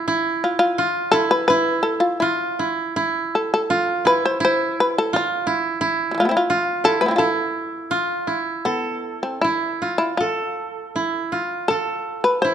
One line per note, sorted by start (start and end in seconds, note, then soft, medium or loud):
0.08 0.84 E4 medium
0.44 0.58 F4 medium
0.59 1.09 F4 medium
0.78 1.19 F4 medium
1.11 1.49 E4 medium
1.11 1.29 A4 medium
1.31 1.47 B4 medium
1.48 2.28 E4 medium
1.48 1.82 B4 medium
1.83 2.01 A4 medium
2.00 2.19 F4 medium
2.20 2.73 E4 medium
2.20 2.65 F4 medium
2.59 2.96 E4 medium
2.96 3.76 E4 medium
3.35 3.51 A4 medium
3.54 4.03 A4 medium
3.70 4.11 F4 medium
4.05 4.40 E4 medium
4.05 4.23 B4 medium
4.25 4.41 C5 medium
4.40 5.19 E4 medium
4.45 4.76 C5 medium
4.80 4.95 B4 medium
4.98 5.13 A4 medium
5.13 5.53 F4 medium
5.13 5.63 F4 medium
5.47 5.81 E4 medium
5.81 6.56 E4 medium
6.11 6.14 C3 soft
6.11 6.21 E3 soft
6.18 6.25 F3 soft
6.18 6.33 A3 soft
6.18 6.29 F4 medium
6.25 6.31 B3 soft
6.25 6.36 C4 soft
6.31 6.43 E4 soft
6.37 6.82 F4 medium
6.50 6.90 F4 medium
6.84 7.19 E4 medium
6.84 7.00 A4 medium
7.01 7.15 A3 soft
7.01 7.08 B4 medium
7.06 7.11 B3 soft
7.06 7.18 C4 soft
7.11 7.16 E4 soft
7.16 7.97 E4 medium
7.16 7.29 F4 soft
7.16 8.24 A4 medium
7.91 8.33 F4 medium
8.27 9.44 E4 soft
8.65 9.20 B3 soft
8.65 10.20 A4 medium
9.23 9.41 C4 medium
9.41 9.96 E4 medium
9.41 9.88 E4 medium
9.82 11.02 F4 soft
9.98 10.17 E4 medium
10.17 11.27 F4 medium
10.17 11.70 A4 medium
10.96 11.38 E4 medium
11.32 12.51 F4 soft
11.68 12.20 A4 medium
11.68 12.54 A4 medium
12.24 12.41 B4 medium
12.42 12.54 E4 medium
12.42 12.54 C5 medium